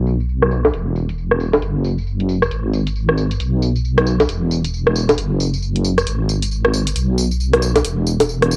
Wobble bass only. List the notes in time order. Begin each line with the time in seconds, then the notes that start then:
Already playing: B1
0.73 E1
1.62 F#1
2.51 G#1
3.40 B1
4.29 E1
5.18 F#1
6.07 G#1
6.95 B1
7.84 E1